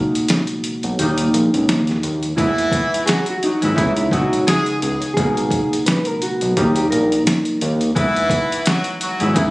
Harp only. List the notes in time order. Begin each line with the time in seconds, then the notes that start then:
Already playing: B2 G#3 A#3 D#4 F#4
0.99 G3 A#3 D#4
2.37 G#3 B3 E4
3.62 G#3 B3 E4
3.75 C#3 G#3 B3 D#4 E4
4.11 C#3 G#3 B3 D#4 E4
5.17 B2 G#3 A#3 D#4 F#4
6.57 G3 A#3 D#4
7.95 G#3 B3 E4
9.20 G#3 B3 E4
9.33 C#3 G#3 B3 D#4 E4